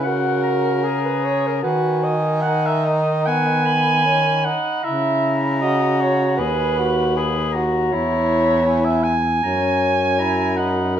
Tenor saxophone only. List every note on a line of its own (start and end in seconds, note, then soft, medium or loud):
0.05 0.85 F#4 medium
0.83 1.61 G#4 medium
1.62 2.13 F#4 medium
2.42 3.22 D#4 medium
3.27 4.06 B3 medium
4.05 4.47 C#4 medium
4.46 4.83 D#4 medium
4.84 5.63 E4 medium
5.61 6.40 F#4 medium
6.39 6.80 G#4 medium
6.78 7.18 F#4 medium
7.17 7.56 G#4 medium
7.55 7.94 F#4 medium
7.92 9.16 E4 medium
9.42 10.21 C#4 medium
10.20 10.60 E4 medium
10.58 10.98 D#4 medium